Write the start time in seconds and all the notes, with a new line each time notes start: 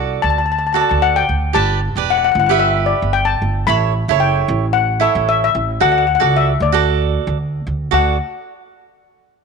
Already playing: C2 F#4 A4 D5 F#5
0.22 D2 A5
0.30 A5
0.38 A5
0.46 A5
0.52 A5
0.59 A5
0.67 A5
0.73 F#4 A4 D5 A5
0.81 A5
0.90 D2 A5
1.02 F#5
1.16 G5
1.29 D2
1.53 G1 G4 B4 D5 A5
1.95 E1 G4 B4 D5
2.10 F#5
2.18 F#5
2.25 F#5
2.32 G1 F#5
2.40 F#5
2.46 G4 B4 F#5
2.51 E5
2.59 E5
2.86 D5
3.02 G1
3.13 G5
3.25 A5
3.42 G1
3.67 A1 E4 A4 C#5 B5
4.08 F#1 E4 A4 C#5
4.20 G5
4.48 A1
4.73 F#5
5.00 E4 A4 C#5 E5
5.15 A1
5.29 E5
5.44 E5
5.55 A1
5.80 D2 F#4 A4 D5 F#5
5.92 F#5
5.98 F#5
6.07 F#5
6.15 F#5
6.20 C#2 F#4 A4 D5 F#5
6.37 E5
6.60 D2 D5
6.72 F#4 A4 D5
7.27 D2
7.67 D2
7.91 D2 F#4 A4 D5 F#5